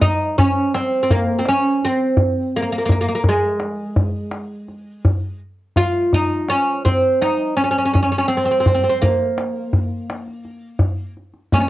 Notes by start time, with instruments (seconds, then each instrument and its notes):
0.01 oud D#4, tombak dum
0.38 oud C#4, tombak dum
0.74 oud C4, tombak tek
1.03 oud C4
1.10 oud A#3, tombak dum
1.39 oud C4
1.46 oud C#4, tombak tek
1.82 oud C4, tombak ka
2.17 tombak dum
2.56 oud A#3
2.62 oud A#3
2.72 oud A#3
2.78 oud A#3
2.85 oud A#3, tombak dum
2.92 oud A#3
3.01 oud A#3
3.08 oud A#3
3.15 oud A#3
3.24 tombak dum
3.29 oud G#3
3.60 tombak tek
3.96 tombak dum
4.31 tombak tek
4.68 tombak ka
5.05 tombak dum
5.76 oud F4, tombak dum
6.13 oud D#4, tombak dum
6.49 oud C#4, tombak tek
6.85 oud C4, tombak dum
7.22 oud D#4, tombak tek
7.57 oud C#4, tombak ka
7.64 oud C#4
7.71 oud C#4
7.78 oud C#4
7.85 oud C#4
7.93 oud C#4, tombak dum
8.03 oud C#4
8.12 oud C#4
8.18 oud C#4
8.28 oud C4
8.37 oud C4
8.45 oud C4
8.51 oud C4
8.60 oud C4
8.66 oud C4, tombak dum
8.74 oud C4
8.84 oud C4
8.89 oud C4
9.02 oud A#3, tombak dum
9.38 tombak tek
9.73 tombak dum
10.10 tombak tek
10.27 tombak ka
10.45 tombak ka
10.79 tombak dum
11.17 tombak ka
11.34 tombak ka
11.52 oud C#4, riq, tombak dum
11.60 oud C#4